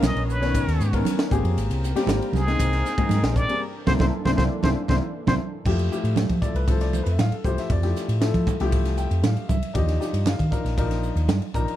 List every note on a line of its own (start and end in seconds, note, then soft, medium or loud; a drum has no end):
0.00 0.14 B1 loud
0.00 0.33 D#3 medium
0.00 1.27 D#3 medium
0.00 0.34 B3 medium
0.00 1.27 B3 medium
0.00 0.34 C#4 medium
0.00 1.27 C#4 medium
0.00 0.34 A#4 medium
0.00 1.30 C#5 loud
0.00 snare loud
0.00 hi-hat pedal medium
0.00 ride medium
0.00 high conga medium
0.05 0.29 D#5 loud
0.15 0.41 A#1 medium
0.15 ride medium
0.29 1.02 B4 medium
0.29 hi-hat pedal medium
0.29 muted conga soft
0.41 0.63 B1 medium
0.41 0.84 D#3 medium
0.41 0.84 B3 medium
0.41 0.84 C#4 medium
0.41 0.85 C#5 medium
0.41 snare soft
0.41 ride medium
0.54 kick medium
0.54 hi-hat pedal medium
0.54 ride medium
0.54 muted conga soft
0.67 0.78 D#2 medium
0.67 snare soft
0.67 ride medium
0.80 1.02 G#2 medium
0.80 hi-hat pedal medium
0.80 muted conga soft
0.93 1.31 D#3 medium
0.93 1.31 B3 medium
0.93 1.32 C#4 medium
0.93 1.32 A#4 medium
0.93 kick medium
0.93 ride medium
1.05 snare soft
1.05 hi-hat pedal medium
1.05 ride medium
1.05 high conga medium
1.19 snare loud
1.19 ride medium
1.31 1.43 G#1 medium
1.31 1.85 A#3 medium
1.31 1.85 C4 medium
1.31 3.59 C4 medium
1.31 1.85 G4 medium
1.31 1.85 G#4 loud
1.31 3.59 A#4 medium
1.31 3.59 G5 medium
1.31 kick loud
1.31 hi-hat pedal medium
1.44 1.55 F2 medium
1.44 ride medium
1.57 1.68 G#1 loud
1.57 hi-hat pedal medium
1.57 ride medium
1.57 muted conga soft
1.70 1.92 C2 medium
1.70 ride medium
1.84 hi-hat pedal medium
1.95 2.38 G3 medium
1.95 2.38 A#3 medium
1.95 2.38 C4 loud
1.95 2.38 G4 loud
1.95 snare soft
1.95 ride medium
2.06 2.18 G#1 loud
2.06 snare loud
2.06 hi-hat pedal medium
2.06 ride medium
2.06 high conga medium
2.22 ride medium
2.33 2.55 C2 medium
2.33 3.38 G#4 loud
2.33 snare soft
2.33 hi-hat pedal medium
2.33 muted conga soft
2.33 high conga medium
2.47 2.89 G#3 medium
2.47 2.89 A#3 medium
2.47 2.90 C4 medium
2.47 2.89 D#4 medium
2.47 snare soft
2.47 ride medium
2.59 2.81 C2 medium
2.59 kick medium
2.59 hi-hat pedal medium
2.59 ride medium
2.59 muted conga soft
2.73 snare soft
2.73 ride medium
2.85 snare soft
2.85 hi-hat pedal medium
2.85 muted conga soft
2.98 3.40 G#3 medium
2.98 3.40 A#3 medium
2.98 3.41 C4 medium
2.98 3.40 D#4 medium
2.98 kick medium
2.98 ride medium
3.09 3.21 G#2 medium
3.09 snare soft
3.09 hi-hat pedal medium
3.09 ride medium
3.09 high conga medium
3.22 3.45 A#1 medium
3.22 snare loud
3.22 ride medium
3.36 3.62 D5 loud
3.36 kick medium
3.36 hi-hat pedal medium
3.49 3.61 G3 medium
3.49 3.61 A#3 medium
3.49 3.61 C4 medium
3.49 3.61 G#4 medium
3.49 ride medium
3.62 5.64 E3 medium
3.62 5.64 A#3 medium
3.62 5.64 D4 medium
3.62 5.64 A4 medium
3.87 3.96 C2 medium
3.87 3.96 A#3 loud
3.87 3.96 C4 medium
3.87 3.96 E4 medium
3.87 3.93 C5 loud
3.87 kick medium
3.87 snare medium
3.87 high conga medium
3.99 4.09 C2 medium
3.99 4.08 A#3 loud
3.99 4.08 C4 loud
3.99 4.08 E4 loud
3.99 4.06 C5 medium
3.99 kick loud
3.99 snare medium
3.99 high conga medium
4.25 4.35 C2 loud
4.25 4.34 A#3 medium
4.25 4.33 C4 medium
4.25 4.34 E4 medium
4.25 4.31 C5 medium
4.25 kick medium
4.25 snare medium
4.25 high conga medium
4.37 4.48 C2 medium
4.37 4.46 A#3 medium
4.37 4.46 C4 medium
4.37 4.46 E4 medium
4.37 4.44 C5 medium
4.37 kick medium
4.37 snare medium
4.37 high conga medium
4.63 4.73 C2 loud
4.63 4.72 A#3 medium
4.63 4.72 C4 loud
4.63 4.72 E4 loud
4.63 4.69 C5 loud
4.63 kick medium
4.63 snare medium
4.63 high conga medium
4.88 4.99 C2 loud
4.88 4.98 A#3 medium
4.88 4.98 C4 medium
4.88 4.98 E4 medium
4.88 4.95 C5 medium
4.88 kick medium
4.88 snare medium
4.88 high conga medium
5.27 5.37 C2 medium
5.27 5.36 A#3 medium
5.27 5.36 C4 medium
5.27 5.36 E4 medium
5.27 5.34 C5 loud
5.27 kick medium
5.27 snare medium
5.27 high conga loud
5.65 5.88 F2 loud
5.65 5.87 F3 medium
5.65 5.87 A3 medium
5.65 5.87 E4 medium
5.65 5.88 G4 loud
5.65 kick medium
5.65 crash medium
5.65 muted conga soft
5.79 ride medium
5.90 6.34 F3 medium
5.90 6.34 A3 medium
5.90 6.34 E4 medium
5.90 6.35 G4 medium
5.90 hi-hat pedal medium
5.90 muted conga soft
6.04 6.26 A2 medium
6.04 ride medium
6.16 snare medium
6.16 ride medium
6.16 high conga medium
6.29 6.41 F3 medium
6.29 kick medium
6.29 ride medium
6.42 6.64 F3 medium
6.42 6.64 A3 medium
6.42 6.64 E4 medium
6.42 6.65 A4 medium
6.42 6.55 D5 medium
6.42 muted fingered electric bass stroke soft
6.42 kick medium
6.42 hi-hat pedal medium
6.54 7.00 C2 medium
6.54 6.68 B4 medium
6.54 ride medium
6.68 7.32 F3 medium
6.68 7.32 A3 medium
6.68 7.33 E4 medium
6.68 7.32 A4 medium
6.68 6.81 C5 medium
6.68 kick medium
6.68 ride medium
6.68 muted conga soft
6.81 6.93 D5 medium
6.81 snare soft
6.81 ride medium
6.93 7.02 C5 medium
6.93 hi-hat pedal medium
6.93 high conga medium
7.03 7.17 F2 medium
7.03 7.11 B4 medium
7.03 ride medium
7.12 7.20 E5 medium
7.19 7.30 A2 medium
7.19 7.32 F5 medium
7.19 snare loud
7.19 ride medium
7.19 muted conga soft
7.19 high conga medium
7.32 7.45 A4 medium
7.32 muted fingered electric bass stroke soft
7.32 ride soft
7.44 7.56 C2 medium
7.44 7.77 F3 medium
7.44 7.77 A3 medium
7.44 7.77 E4 medium
7.44 7.77 G4 medium
7.44 7.57 C5 medium
7.44 kick medium
7.44 hi-hat pedal medium
7.57 7.71 E5 medium
7.57 muted fingered electric bass stroke soft
7.57 snare soft
7.57 ride medium
7.70 7.92 F2 loud
7.70 8.19 D5 medium
7.70 kick loud
7.70 ride medium
7.70 muted conga soft
7.83 8.15 F3 medium
7.83 8.15 A3 medium
7.83 8.15 E4 medium
7.83 8.15 G4 medium
7.83 snare soft
7.83 ride medium
7.96 snare soft
7.96 hi-hat pedal medium
7.96 muted conga soft
8.08 8.31 A2 medium
8.08 ride medium
8.20 8.53 F3 medium
8.20 8.53 A3 medium
8.20 8.53 E4 medium
8.20 8.54 A4 medium
8.20 snare loud
8.20 ride medium
8.34 8.45 F3 medium
8.34 kick medium
8.34 ride medium
8.47 muted fingered electric bass stroke soft
8.47 kick medium
8.47 hi-hat pedal medium
8.47 high conga medium
8.60 9.05 C2 medium
8.60 9.46 F3 loud
8.60 9.46 A3 medium
8.60 9.46 E4 medium
8.60 9.46 G4 loud
8.60 snare soft
8.60 ride medium
8.72 kick medium
8.72 ride medium
8.72 muted conga soft
8.85 snare soft
8.85 ride medium
8.97 9.23 G5 medium
8.97 hi-hat pedal medium
9.11 9.22 F2 medium
9.11 ride medium
9.23 9.35 A2 loud
9.23 9.49 F5 medium
9.23 snare loud
9.23 ride medium
9.23 muted conga soft
9.23 high conga medium
9.37 muted fingered electric bass stroke soft
9.37 ride medium
9.49 9.61 C2 medium
9.49 9.74 E5 medium
9.49 kick medium
9.49 hi-hat pedal medium
9.49 high conga medium
9.62 muted fingered electric bass stroke soft
9.62 ride medium
9.74 9.97 D#2 loud
9.74 9.96 F3 medium
9.74 9.96 D4 medium
9.74 9.96 D#4 medium
9.74 9.96 G4 medium
9.74 kick loud
9.74 ride medium
9.74 muted conga soft
9.78 10.24 D#5 medium
9.88 snare soft
9.88 ride medium
10.00 10.43 F3 medium
10.00 10.43 D4 medium
10.00 10.43 D#4 medium
10.00 10.44 G4 medium
10.00 snare soft
10.00 hi-hat pedal medium
10.00 muted conga soft
10.13 10.36 G2 medium
10.13 ride medium
10.26 11.00 F5 medium
10.26 snare loud
10.26 ride medium
10.26 high conga medium
10.39 10.50 D#3 medium
10.39 kick medium
10.39 ride medium
10.51 10.73 F3 medium
10.51 10.73 D4 medium
10.51 10.73 D#4 medium
10.51 10.73 A#4 medium
10.51 muted fingered electric bass stroke soft
10.51 kick medium
10.51 hi-hat pedal medium
10.64 11.09 A#1 medium
10.64 snare soft
10.64 ride medium
10.77 11.42 F3 medium
10.77 11.42 D4 medium
10.77 11.42 D#4 medium
10.77 11.42 A#4 medium
10.77 kick medium
10.77 ride medium
10.77 muted conga soft
10.91 snare soft
10.91 ride medium
11.03 hi-hat pedal medium
11.16 11.27 D#2 medium
11.16 ride medium
11.27 11.39 G2 loud
11.27 snare loud
11.27 ride medium
11.27 muted conga soft
11.27 high conga medium
11.42 ride medium
11.54 11.65 A#1 medium
11.54 11.76 F3 medium
11.54 11.76 D4 medium
11.54 11.76 D#4 medium
11.54 11.76 A#4 medium
11.54 11.76 A#5 loud
11.54 kick medium
11.54 hi-hat pedal medium
11.67 muted fingered electric bass stroke soft
11.67 ride medium